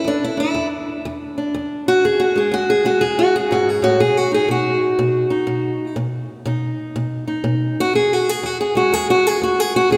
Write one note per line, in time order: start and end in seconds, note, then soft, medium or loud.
0.04 0.51 E2 medium
0.04 0.23 D4 medium
0.24 0.39 E4 medium
0.37 1.36 D4 medium
0.37 0.66 E4 medium
0.54 1.01 E2 medium
1.05 1.51 E2 medium
1.38 1.87 D4 medium
1.54 2.00 E2 medium
1.88 2.04 F#4 loud
2.04 2.50 E2 medium
2.04 2.20 G#4 medium
2.20 2.36 F#4 medium
2.36 2.84 G#3 soft
2.36 2.53 G#4 medium
2.51 2.98 E2 medium
2.51 2.69 F#4 loud
2.70 2.86 G#4 medium
2.85 4.00 G#3 soft
2.85 3.02 F#4 medium
3.01 3.47 E2 medium
3.01 3.18 G#4 medium
3.19 3.35 F#4 medium
3.36 3.51 G#4 medium
3.51 3.82 G#2 medium
3.51 3.68 F#4 medium
3.69 3.84 G#4 medium
3.82 4.00 A2 medium
3.82 4.00 F#4 loud
4.00 4.46 B2 medium
4.00 4.17 G#4 medium
4.17 4.33 F#4 medium
4.32 5.29 D#4 medium
4.32 4.50 G#4 medium
4.48 4.95 B2 medium
4.48 5.98 F#4 medium
4.99 5.44 B2 medium
5.30 5.95 D#4 medium
5.47 5.93 B2 medium
5.96 6.42 B2 medium
6.46 6.91 B2 medium
6.46 7.26 D#4 soft
6.96 7.41 B2 medium
7.28 7.92 D#4 medium
7.44 7.90 B2 medium
7.80 7.95 F#4 loud
7.93 8.39 E2 medium
7.93 8.13 G#4 medium
8.13 8.29 F#4 medium
8.29 8.46 G#4 medium
8.43 8.89 E2 medium
8.43 8.60 F#4 loud
8.61 8.76 G#4 medium
8.75 9.97 G#3 soft
8.75 8.93 F#4 medium
8.92 9.38 E2 medium
8.92 9.09 G#4 medium
9.10 9.27 F#4 medium
9.27 9.42 G#4 medium
9.42 9.87 E2 medium
9.42 9.60 F#4 medium
9.60 9.75 G#4 medium
9.76 9.91 F#4 loud
9.91 9.97 E2 medium
9.91 9.97 G#4 loud